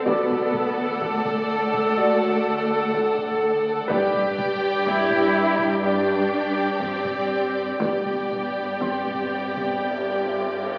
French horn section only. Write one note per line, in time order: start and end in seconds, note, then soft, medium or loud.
0.05 0.42 F#4 medium
0.05 0.42 D5 medium
1.97 2.34 F#4 medium
1.97 2.34 D5 medium
3.90 4.26 G4 medium
3.90 4.26 D5 medium
5.83 6.20 G4 medium
5.83 6.20 D5 medium
7.80 8.19 G4 medium
7.80 8.19 D5 medium
9.81 10.20 G4 medium
9.81 10.20 D5 medium